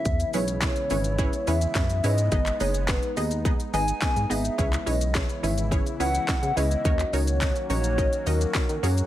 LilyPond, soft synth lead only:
\new Staff \with { instrumentName = "Soft synth lead" } { \time 4/4 \key cis \dorian \tempo 4 = 106 e''8 cis''2 e''4 dis''8~ | dis''8 cis''8 b'8 dis''8 r8 gis''4 e''8~ | e''8 dis''8 cis''8 e''8 r8 fis''4 dis''8~ | dis''8 cis''4 cis''4 ais'4 cis''16 cis''16 | }